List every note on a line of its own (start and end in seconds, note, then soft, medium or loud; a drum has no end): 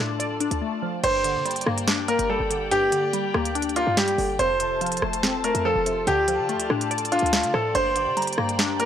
0.00 0.49 A2 loud
0.00 0.41 D3 medium
0.00 0.62 F3 medium
0.00 0.60 A3 medium
0.00 0.39 D4 medium
0.00 1.00 F4 medium
0.00 1.02 A4 medium
0.00 1.02 D5 medium
0.00 1.00 A5 medium
0.20 1.03 D5 loud
0.20 closed hi-hat medium
0.40 1.03 D4 medium
0.40 closed hi-hat medium
0.51 0.62 D2 loud
0.51 closed hi-hat medium
0.62 1.04 A3 medium
0.82 1.03 F3 medium
1.03 1.37 G1 loud
1.03 2.08 G2 medium
1.03 4.36 A#3 medium
1.03 4.36 G4 medium
1.03 1.84 C5 loud
1.03 4.36 D5 medium
1.03 4.36 G5 medium
1.03 closed hi-hat medium
1.03 crash loud
1.24 2.29 D3 medium
1.24 closed hi-hat medium
1.35 1.65 D3 loud
1.46 2.28 G3 medium
1.46 closed hi-hat medium
1.51 closed hi-hat medium
1.56 closed hi-hat medium
1.61 closed hi-hat medium
1.66 2.17 G2 loud
1.66 2.07 A#3 medium
1.66 cross-stick loud
1.78 closed hi-hat medium
1.87 2.92 D4 loud
1.87 snare loud
2.08 3.13 A#3 medium
2.08 2.27 A#4 medium
2.08 closed hi-hat medium
2.19 2.39 G1 loud
2.19 closed hi-hat medium
2.30 3.12 G3 medium
2.30 2.69 A4 medium
2.40 2.90 G1 loud
2.50 2.91 D3 medium
2.50 closed hi-hat medium
2.71 3.76 G2 medium
2.71 3.51 G4 loud
2.71 closed hi-hat medium
2.92 3.97 D3 medium
2.92 closed hi-hat medium
3.13 3.96 G3 medium
3.13 closed hi-hat medium
3.34 3.85 D2 loud
3.34 3.75 A#3 medium
3.34 cross-stick loud
3.45 closed hi-hat medium
3.55 4.39 D4 medium
3.55 closed hi-hat medium
3.62 closed hi-hat medium
3.69 closed hi-hat soft
3.76 4.39 A#3 medium
3.76 3.95 F4 medium
3.76 closed hi-hat medium
3.87 4.17 G2 loud
3.97 4.39 G3 medium
3.97 4.37 G4 medium
3.97 snare loud
3.97 closed hi-hat medium
4.08 closed hi-hat medium
4.18 4.38 G1 loud
4.18 4.39 D3 medium
4.18 open hi-hat medium
4.39 5.00 F1 loud
4.39 5.44 F2 medium
4.39 7.72 F4 medium
4.39 7.72 A4 medium
4.39 5.19 C5 loud
4.39 6.05 C5 medium
4.39 6.05 A5 medium
4.39 closed hi-hat medium
4.60 5.65 C3 medium
4.60 closed hi-hat medium
4.81 5.64 F3 medium
4.81 closed hi-hat medium
4.86 closed hi-hat medium
4.92 closed hi-hat medium
4.97 closed hi-hat medium
5.02 5.53 F1 loud
5.02 5.43 A3 medium
5.02 cross-stick loud
5.13 closed hi-hat medium
5.23 6.07 C4 loud
5.23 snare loud
5.44 6.07 A3 medium
5.44 5.63 A#4 medium
5.44 closed hi-hat medium
5.55 5.75 F2 loud
5.55 closed hi-hat medium
5.65 6.07 F3 medium
5.65 6.05 A4 medium
5.76 6.06 F1 loud
5.86 6.07 C3 medium
5.86 closed hi-hat medium
6.07 6.40 D2 loud
6.07 7.12 D3 medium
6.07 6.87 G4 loud
6.07 8.85 D5 medium
6.07 7.73 A5 medium
6.07 closed hi-hat medium
6.28 7.33 F3 medium
6.28 closed hi-hat medium
6.39 6.56 D3 loud
6.49 7.32 A3 medium
6.49 closed hi-hat soft
6.54 6.69 D2 loud
6.60 closed hi-hat medium
6.70 7.20 A2 loud
6.70 7.11 D4 medium
6.70 cross-stick loud
6.81 closed hi-hat medium
6.91 7.75 D5 loud
6.91 closed hi-hat medium
6.98 closed hi-hat medium
7.05 closed hi-hat medium
7.12 7.75 D4 medium
7.12 7.51 F4 medium
7.12 closed hi-hat medium
7.19 7.45 D2 loud
7.19 closed hi-hat medium
7.26 closed hi-hat medium
7.33 7.75 A3 medium
7.33 snare loud
7.33 closed hi-hat medium
7.43 7.53 D3 loud
7.43 closed hi-hat medium
7.54 7.74 A2 loud
7.54 7.75 F3 medium
7.54 7.73 A4 medium
7.54 cross-stick loud
7.75 8.08 G1 loud
7.75 8.80 G2 loud
7.75 8.85 A#3 medium
7.75 8.85 G4 medium
7.75 8.55 C5 loud
7.75 8.85 G5 medium
7.75 8.14 C6 loud
7.75 closed hi-hat medium
7.96 8.85 D3 medium
7.96 closed hi-hat medium
8.06 8.36 D3 loud
8.17 8.85 G3 medium
8.17 8.85 A#5 medium
8.17 closed hi-hat medium
8.22 closed hi-hat medium
8.27 closed hi-hat medium
8.33 closed hi-hat medium
8.38 8.85 G2 loud
8.38 8.79 A#3 medium
8.38 cross-stick loud
8.49 closed hi-hat medium
8.59 8.85 D4 loud
8.59 snare loud
8.80 8.85 A#3 medium
8.80 8.85 A#4 medium
8.80 closed hi-hat medium